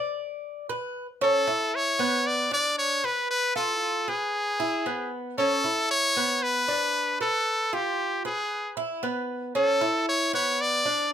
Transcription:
0, 0, Header, 1, 3, 480
1, 0, Start_track
1, 0, Key_signature, 3, "major"
1, 0, Tempo, 520833
1, 1120, Time_signature, 4, 2, 24, 8
1, 10261, End_track
2, 0, Start_track
2, 0, Title_t, "Trumpet"
2, 0, Program_c, 0, 56
2, 1138, Note_on_c, 0, 69, 102
2, 1617, Note_on_c, 0, 73, 110
2, 1630, Note_off_c, 0, 69, 0
2, 2091, Note_on_c, 0, 74, 106
2, 2104, Note_off_c, 0, 73, 0
2, 2324, Note_off_c, 0, 74, 0
2, 2335, Note_on_c, 0, 74, 108
2, 2550, Note_off_c, 0, 74, 0
2, 2567, Note_on_c, 0, 73, 103
2, 2809, Note_on_c, 0, 71, 93
2, 2823, Note_off_c, 0, 73, 0
2, 3040, Note_off_c, 0, 71, 0
2, 3045, Note_on_c, 0, 71, 103
2, 3265, Note_off_c, 0, 71, 0
2, 3283, Note_on_c, 0, 69, 92
2, 3767, Note_on_c, 0, 68, 90
2, 3781, Note_off_c, 0, 69, 0
2, 4723, Note_off_c, 0, 68, 0
2, 4964, Note_on_c, 0, 69, 104
2, 5408, Note_off_c, 0, 69, 0
2, 5446, Note_on_c, 0, 73, 122
2, 5925, Note_on_c, 0, 71, 106
2, 5939, Note_off_c, 0, 73, 0
2, 6643, Note_off_c, 0, 71, 0
2, 6651, Note_on_c, 0, 69, 93
2, 7132, Note_on_c, 0, 67, 84
2, 7146, Note_off_c, 0, 69, 0
2, 7607, Note_off_c, 0, 67, 0
2, 7611, Note_on_c, 0, 68, 81
2, 8053, Note_off_c, 0, 68, 0
2, 8811, Note_on_c, 0, 69, 92
2, 9254, Note_off_c, 0, 69, 0
2, 9299, Note_on_c, 0, 73, 104
2, 9515, Note_off_c, 0, 73, 0
2, 9536, Note_on_c, 0, 73, 104
2, 9781, Note_on_c, 0, 74, 113
2, 9795, Note_off_c, 0, 73, 0
2, 10252, Note_off_c, 0, 74, 0
2, 10261, End_track
3, 0, Start_track
3, 0, Title_t, "Cuban tres"
3, 0, Program_c, 1, 25
3, 0, Note_on_c, 1, 74, 98
3, 604, Note_off_c, 1, 74, 0
3, 640, Note_on_c, 1, 71, 68
3, 974, Note_off_c, 1, 71, 0
3, 1119, Note_on_c, 1, 61, 86
3, 1351, Note_off_c, 1, 61, 0
3, 1359, Note_on_c, 1, 64, 77
3, 1824, Note_off_c, 1, 64, 0
3, 1835, Note_on_c, 1, 59, 91
3, 2302, Note_off_c, 1, 59, 0
3, 2317, Note_on_c, 1, 62, 82
3, 2783, Note_off_c, 1, 62, 0
3, 2799, Note_on_c, 1, 71, 75
3, 3264, Note_off_c, 1, 71, 0
3, 3277, Note_on_c, 1, 65, 80
3, 3743, Note_off_c, 1, 65, 0
3, 3758, Note_on_c, 1, 71, 77
3, 4224, Note_off_c, 1, 71, 0
3, 4238, Note_on_c, 1, 64, 85
3, 4471, Note_off_c, 1, 64, 0
3, 4479, Note_on_c, 1, 59, 79
3, 4944, Note_off_c, 1, 59, 0
3, 4959, Note_on_c, 1, 61, 86
3, 5191, Note_off_c, 1, 61, 0
3, 5199, Note_on_c, 1, 64, 81
3, 5665, Note_off_c, 1, 64, 0
3, 5682, Note_on_c, 1, 59, 87
3, 6146, Note_off_c, 1, 59, 0
3, 6158, Note_on_c, 1, 62, 83
3, 6624, Note_off_c, 1, 62, 0
3, 6641, Note_on_c, 1, 71, 80
3, 7106, Note_off_c, 1, 71, 0
3, 7122, Note_on_c, 1, 65, 77
3, 7587, Note_off_c, 1, 65, 0
3, 7602, Note_on_c, 1, 71, 75
3, 8068, Note_off_c, 1, 71, 0
3, 8082, Note_on_c, 1, 64, 84
3, 8314, Note_off_c, 1, 64, 0
3, 8321, Note_on_c, 1, 59, 81
3, 8787, Note_off_c, 1, 59, 0
3, 8802, Note_on_c, 1, 61, 88
3, 9035, Note_off_c, 1, 61, 0
3, 9043, Note_on_c, 1, 64, 83
3, 9509, Note_off_c, 1, 64, 0
3, 9523, Note_on_c, 1, 59, 86
3, 9989, Note_off_c, 1, 59, 0
3, 10004, Note_on_c, 1, 62, 83
3, 10261, Note_off_c, 1, 62, 0
3, 10261, End_track
0, 0, End_of_file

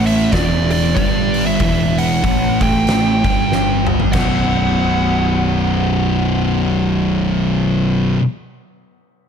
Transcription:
0, 0, Header, 1, 5, 480
1, 0, Start_track
1, 0, Tempo, 637620
1, 1201, Time_signature, 4, 2, 24, 8
1, 6992, End_track
2, 0, Start_track
2, 0, Title_t, "Lead electric guitar"
2, 0, Program_c, 0, 29
2, 48, Note_on_c, 0, 76, 91
2, 244, Note_off_c, 0, 76, 0
2, 247, Note_on_c, 0, 74, 97
2, 527, Note_off_c, 0, 74, 0
2, 536, Note_on_c, 0, 74, 79
2, 713, Note_off_c, 0, 74, 0
2, 722, Note_on_c, 0, 74, 79
2, 1075, Note_off_c, 0, 74, 0
2, 1102, Note_on_c, 0, 76, 82
2, 1494, Note_off_c, 0, 76, 0
2, 1494, Note_on_c, 0, 78, 101
2, 1975, Note_off_c, 0, 78, 0
2, 1978, Note_on_c, 0, 79, 94
2, 2897, Note_off_c, 0, 79, 0
2, 3106, Note_on_c, 0, 78, 75
2, 5606, Note_off_c, 0, 78, 0
2, 6992, End_track
3, 0, Start_track
3, 0, Title_t, "Distorted electric guitar"
3, 0, Program_c, 1, 30
3, 0, Note_on_c, 1, 45, 93
3, 0, Note_on_c, 1, 57, 97
3, 241, Note_off_c, 1, 45, 0
3, 244, Note_off_c, 1, 57, 0
3, 250, Note_on_c, 1, 40, 92
3, 260, Note_on_c, 1, 52, 105
3, 720, Note_off_c, 1, 40, 0
3, 725, Note_off_c, 1, 52, 0
3, 735, Note_on_c, 1, 43, 89
3, 740, Note_on_c, 1, 55, 107
3, 1201, Note_off_c, 1, 43, 0
3, 1204, Note_off_c, 1, 55, 0
3, 1207, Note_on_c, 1, 40, 94
3, 1216, Note_on_c, 1, 52, 95
3, 1677, Note_off_c, 1, 40, 0
3, 1681, Note_off_c, 1, 52, 0
3, 1681, Note_on_c, 1, 45, 86
3, 1690, Note_on_c, 1, 57, 103
3, 1953, Note_off_c, 1, 45, 0
3, 1958, Note_off_c, 1, 57, 0
3, 1964, Note_on_c, 1, 45, 80
3, 1972, Note_on_c, 1, 57, 92
3, 2433, Note_off_c, 1, 45, 0
3, 2437, Note_off_c, 1, 57, 0
3, 2448, Note_on_c, 1, 43, 86
3, 2454, Note_on_c, 1, 55, 99
3, 3109, Note_off_c, 1, 43, 0
3, 3112, Note_on_c, 1, 35, 90
3, 3118, Note_off_c, 1, 55, 0
3, 3126, Note_on_c, 1, 42, 99
3, 3139, Note_on_c, 1, 47, 102
3, 6166, Note_off_c, 1, 35, 0
3, 6173, Note_off_c, 1, 42, 0
3, 6180, Note_off_c, 1, 47, 0
3, 6992, End_track
4, 0, Start_track
4, 0, Title_t, "Picked electric bass"
4, 0, Program_c, 2, 34
4, 0, Note_on_c, 2, 33, 93
4, 217, Note_off_c, 2, 33, 0
4, 245, Note_on_c, 2, 28, 91
4, 693, Note_off_c, 2, 28, 0
4, 730, Note_on_c, 2, 31, 90
4, 1174, Note_off_c, 2, 31, 0
4, 1208, Note_on_c, 2, 28, 92
4, 1653, Note_off_c, 2, 28, 0
4, 1682, Note_on_c, 2, 33, 88
4, 1942, Note_off_c, 2, 33, 0
4, 1963, Note_on_c, 2, 33, 90
4, 2411, Note_off_c, 2, 33, 0
4, 2443, Note_on_c, 2, 31, 88
4, 3088, Note_off_c, 2, 31, 0
4, 3115, Note_on_c, 2, 23, 93
4, 6137, Note_off_c, 2, 23, 0
4, 6992, End_track
5, 0, Start_track
5, 0, Title_t, "Drums"
5, 51, Note_on_c, 9, 46, 60
5, 126, Note_off_c, 9, 46, 0
5, 243, Note_on_c, 9, 46, 76
5, 248, Note_on_c, 9, 36, 97
5, 257, Note_on_c, 9, 38, 100
5, 318, Note_off_c, 9, 46, 0
5, 323, Note_off_c, 9, 36, 0
5, 332, Note_off_c, 9, 38, 0
5, 530, Note_on_c, 9, 46, 58
5, 605, Note_off_c, 9, 46, 0
5, 727, Note_on_c, 9, 36, 102
5, 728, Note_on_c, 9, 46, 69
5, 802, Note_off_c, 9, 36, 0
5, 804, Note_off_c, 9, 46, 0
5, 1009, Note_on_c, 9, 46, 56
5, 1084, Note_off_c, 9, 46, 0
5, 1202, Note_on_c, 9, 46, 71
5, 1206, Note_on_c, 9, 36, 99
5, 1278, Note_off_c, 9, 46, 0
5, 1281, Note_off_c, 9, 36, 0
5, 1492, Note_on_c, 9, 46, 53
5, 1567, Note_off_c, 9, 46, 0
5, 1685, Note_on_c, 9, 36, 102
5, 1685, Note_on_c, 9, 46, 67
5, 1760, Note_off_c, 9, 36, 0
5, 1761, Note_off_c, 9, 46, 0
5, 1963, Note_on_c, 9, 46, 53
5, 1965, Note_on_c, 9, 36, 103
5, 2039, Note_off_c, 9, 46, 0
5, 2040, Note_off_c, 9, 36, 0
5, 2160, Note_on_c, 9, 46, 66
5, 2174, Note_on_c, 9, 38, 103
5, 2235, Note_off_c, 9, 46, 0
5, 2249, Note_off_c, 9, 38, 0
5, 2442, Note_on_c, 9, 46, 52
5, 2443, Note_on_c, 9, 36, 103
5, 2517, Note_off_c, 9, 46, 0
5, 2518, Note_off_c, 9, 36, 0
5, 2649, Note_on_c, 9, 38, 60
5, 2725, Note_off_c, 9, 38, 0
5, 2910, Note_on_c, 9, 45, 84
5, 2985, Note_off_c, 9, 45, 0
5, 3009, Note_on_c, 9, 43, 82
5, 3085, Note_off_c, 9, 43, 0
5, 3110, Note_on_c, 9, 49, 84
5, 3115, Note_on_c, 9, 36, 90
5, 3124, Note_on_c, 9, 38, 95
5, 3185, Note_off_c, 9, 49, 0
5, 3190, Note_off_c, 9, 36, 0
5, 3199, Note_off_c, 9, 38, 0
5, 6992, End_track
0, 0, End_of_file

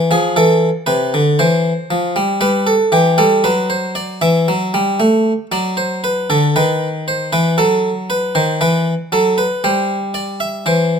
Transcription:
0, 0, Header, 1, 2, 480
1, 0, Start_track
1, 0, Tempo, 1030928
1, 1124, Time_signature, 4, 2, 24, 8
1, 5120, End_track
2, 0, Start_track
2, 0, Title_t, "Harpsichord"
2, 0, Program_c, 0, 6
2, 0, Note_on_c, 0, 52, 69
2, 47, Note_off_c, 0, 52, 0
2, 50, Note_on_c, 0, 53, 72
2, 52, Note_on_c, 0, 68, 82
2, 165, Note_off_c, 0, 53, 0
2, 166, Note_off_c, 0, 68, 0
2, 169, Note_on_c, 0, 52, 75
2, 170, Note_on_c, 0, 69, 91
2, 317, Note_off_c, 0, 52, 0
2, 318, Note_off_c, 0, 69, 0
2, 402, Note_on_c, 0, 71, 79
2, 405, Note_on_c, 0, 48, 71
2, 522, Note_off_c, 0, 48, 0
2, 531, Note_on_c, 0, 50, 68
2, 552, Note_off_c, 0, 71, 0
2, 645, Note_off_c, 0, 50, 0
2, 648, Note_on_c, 0, 72, 90
2, 650, Note_on_c, 0, 52, 70
2, 797, Note_off_c, 0, 52, 0
2, 887, Note_on_c, 0, 53, 68
2, 1002, Note_off_c, 0, 53, 0
2, 1006, Note_on_c, 0, 55, 69
2, 1111, Note_off_c, 0, 72, 0
2, 1115, Note_off_c, 0, 55, 0
2, 1121, Note_on_c, 0, 55, 69
2, 1122, Note_on_c, 0, 71, 76
2, 1238, Note_off_c, 0, 71, 0
2, 1241, Note_on_c, 0, 69, 68
2, 1269, Note_off_c, 0, 55, 0
2, 1358, Note_off_c, 0, 69, 0
2, 1360, Note_on_c, 0, 52, 93
2, 1361, Note_on_c, 0, 67, 73
2, 1476, Note_off_c, 0, 52, 0
2, 1477, Note_off_c, 0, 67, 0
2, 1480, Note_on_c, 0, 55, 91
2, 1481, Note_on_c, 0, 69, 72
2, 1597, Note_off_c, 0, 55, 0
2, 1597, Note_off_c, 0, 69, 0
2, 1602, Note_on_c, 0, 54, 91
2, 1602, Note_on_c, 0, 71, 72
2, 1718, Note_off_c, 0, 71, 0
2, 1722, Note_on_c, 0, 72, 62
2, 1838, Note_off_c, 0, 72, 0
2, 1840, Note_on_c, 0, 74, 75
2, 1950, Note_off_c, 0, 54, 0
2, 1957, Note_off_c, 0, 74, 0
2, 1963, Note_on_c, 0, 52, 88
2, 1963, Note_on_c, 0, 76, 75
2, 2078, Note_off_c, 0, 52, 0
2, 2087, Note_on_c, 0, 54, 95
2, 2200, Note_off_c, 0, 54, 0
2, 2207, Note_on_c, 0, 55, 88
2, 2321, Note_off_c, 0, 55, 0
2, 2326, Note_on_c, 0, 57, 82
2, 2474, Note_off_c, 0, 57, 0
2, 2544, Note_off_c, 0, 76, 0
2, 2568, Note_on_c, 0, 54, 86
2, 2570, Note_on_c, 0, 74, 73
2, 2682, Note_off_c, 0, 74, 0
2, 2687, Note_on_c, 0, 72, 70
2, 2801, Note_off_c, 0, 72, 0
2, 2811, Note_on_c, 0, 71, 67
2, 2915, Note_off_c, 0, 54, 0
2, 2924, Note_off_c, 0, 71, 0
2, 2932, Note_on_c, 0, 50, 84
2, 2933, Note_on_c, 0, 69, 70
2, 3044, Note_off_c, 0, 50, 0
2, 3044, Note_off_c, 0, 69, 0
2, 3054, Note_on_c, 0, 51, 92
2, 3054, Note_on_c, 0, 71, 76
2, 3199, Note_off_c, 0, 71, 0
2, 3296, Note_on_c, 0, 72, 76
2, 3397, Note_off_c, 0, 51, 0
2, 3405, Note_off_c, 0, 72, 0
2, 3411, Note_on_c, 0, 71, 73
2, 3412, Note_on_c, 0, 52, 86
2, 3521, Note_off_c, 0, 71, 0
2, 3522, Note_off_c, 0, 52, 0
2, 3529, Note_on_c, 0, 69, 70
2, 3530, Note_on_c, 0, 54, 86
2, 3674, Note_off_c, 0, 69, 0
2, 3771, Note_on_c, 0, 71, 69
2, 3872, Note_off_c, 0, 54, 0
2, 3881, Note_off_c, 0, 71, 0
2, 3888, Note_on_c, 0, 72, 70
2, 3889, Note_on_c, 0, 51, 78
2, 4000, Note_off_c, 0, 51, 0
2, 4000, Note_off_c, 0, 72, 0
2, 4008, Note_on_c, 0, 52, 88
2, 4010, Note_on_c, 0, 71, 74
2, 4155, Note_off_c, 0, 52, 0
2, 4155, Note_off_c, 0, 71, 0
2, 4248, Note_on_c, 0, 54, 85
2, 4249, Note_on_c, 0, 69, 69
2, 4361, Note_off_c, 0, 69, 0
2, 4367, Note_on_c, 0, 71, 71
2, 4394, Note_off_c, 0, 54, 0
2, 4479, Note_off_c, 0, 71, 0
2, 4489, Note_on_c, 0, 55, 83
2, 4489, Note_on_c, 0, 72, 69
2, 4635, Note_off_c, 0, 72, 0
2, 4722, Note_on_c, 0, 74, 66
2, 4838, Note_off_c, 0, 74, 0
2, 4843, Note_on_c, 0, 76, 67
2, 4951, Note_off_c, 0, 55, 0
2, 4959, Note_off_c, 0, 76, 0
2, 4963, Note_on_c, 0, 52, 62
2, 4965, Note_on_c, 0, 72, 64
2, 5114, Note_off_c, 0, 72, 0
2, 5120, Note_off_c, 0, 52, 0
2, 5120, End_track
0, 0, End_of_file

